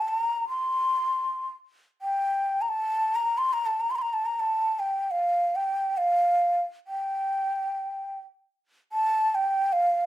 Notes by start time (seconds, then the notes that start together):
0.08 A#5
0.49 C6
2.02 G5
2.62 A#5
2.69 A5
3.15 A#5
3.38 C6
3.53 A#5
3.66 A5
3.80 A#5
3.91 C6
3.95 A#5 C6
4.02 A#5
4.13 A5
4.26 A#5
4.40 A5
4.79 G5
5.11 F5
5.56 G5
5.97 F5
6.87 G5
8.92 A5
9.35 G5
9.73 F5